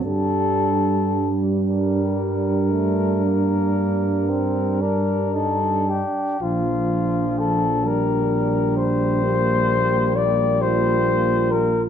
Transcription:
X:1
M:12/8
L:1/8
Q:3/8=40
K:Gm
V:1 name="Flugelhorn"
A2 z B6 B A G | [K:Bb] F2 A B2 c3 d c2 B |]
V:2 name="French horn section"
D8- D3 z | [K:Bb] z6 G3 F3 |]
V:3 name="Euphonium"
G,8- G,3 z | [K:Bb] D6 B,6 |]
V:4 name="Trombone"
G,3 G,2 A, B,2 C D E D | [K:Bb] F,3 G,8- G, |]
V:5 name="Tuba" clef=bass
G,,8- G,,3 z | [K:Bb] B,,,12 |]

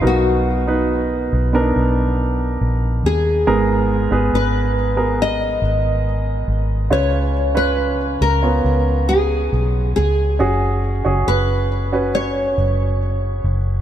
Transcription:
X:1
M:4/4
L:1/16
Q:1/4=70
K:F#
V:1 name="Nylon-string guitar"
F6 z8 G2- | G4 B4 d8 | c3 B3 A4 G4 G2- | G4 B4 c8 |]
V:2 name="Grand piano"
[B,DA]3 [B,DB]4 [B,=D^DA]8 z | [B,GA]3 [B,GB]4 [B,GA]8 z | [CEB]3 [CEB]4 [B,CE]8 z | [CFG]3 [CFG]4 [CFB]8 z |]
V:3 name="Grand piano" clef=bass
B,,6 z8 z2 | G,,6 z8 z2 | C,6 z8 z2 | z16 |]
V:4 name="Fingered electric bass" clef=bass
B,,,6 B,,,2 B,,,4 A,,,2 D,,2 | G,,,3 G,,, G,,,6 G,,,4 G,,,2 | C,,6 C,,2 C,,4 B,,,2 C,,2 | F,,,3 F,,, F,,,6 F,,,4 F,,,2 |]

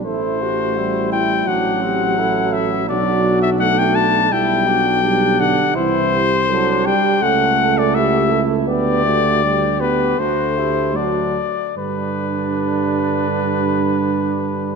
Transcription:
X:1
M:4/4
L:1/16
Q:1/4=82
K:G
V:1 name="Trumpet"
c6 g2 f6 e2 | d3 e f g a2 g6 f2 | c6 g2 f3 d e3 z | d6 B2 c4 d4 |
B16 |]
V:2 name="French horn"
A2 G2 F2 E2 F2 G2 A4 | F6 z2 E2 F2 G4 | E2 G2 A2 G2 A4 G2 A2 | B2 F2 G4 A2 G2 F2 z2 |
G,16 |]
V:3 name="Flugelhorn"
E2 F2 E4 D2 C2 E4 | D4 D4 E2 D2 D4 | E2 z2 D4 ^C4 E4 | G4 G4 F2 E2 D2 z2 |
D16 |]
V:4 name="Trombone" clef=bass
A,4 G,4 F,8 | F,4 A,4 G,4 G,2 D,2 | E,2 z2 F,2 G,2 A,8 | B,2 A,2 G,2 B,2 A,4 F,2 z2 |
D,16 |]
V:5 name="Tuba" clef=bass
A,,,8 A,,,8 | B,,,8 B,,,8 | C,,6 z2 ^C,,8 | D,,8 D,,6 z2 |
G,,16 |]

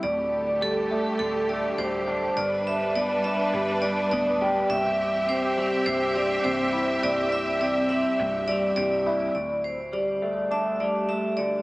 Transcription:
X:1
M:4/4
L:1/8
Q:1/4=103
K:Ddor
V:1 name="Vibraphone"
d2 A2 A d c2 | d e d e2 d d2 | e2 c2 c d c2 | d e d e2 d d2 |
d c d2 e d e d |]
V:2 name="String section"
[D,A,G]8 | [G,DB]8 | [CGe]8- | [CGe]8 |
z8 |]
V:3 name="Clean electric guitar" clef=bass
D,,2 G, A, D, A, G, D | G,,2 B, D G, D B, G | C,,2 C, G, G,, G, C, E | C,,2 C, G, G,, G, C, E |
D,,2 G, A, D G, A, D, |]
V:4 name="Picked electric bass" clef=bass
D,,,4 D,,,2 D,,,2 | G,,,4 G,,,2 D,,,2 | C,,,4 C,,,2 C,,,2 | C,,,4 C,,,2 C,,,2 |
D,,,8 |]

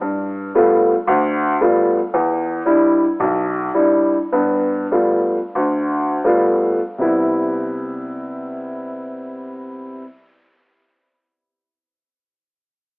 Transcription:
X:1
M:4/4
L:1/8
Q:"Swing" 1/4=91
K:C
V:1 name="Upright piano"
G,,2 [G,A,B,F] z D,,2 [G,A,B,F] z | E,,2 [G,DE] z B,,,2 [G,DE] z | [G,,B,]2 [G,A,B,F] z D,,2 [G,A,B,F] z | [C,G,B,E]8- |
[C,G,B,E]8 |]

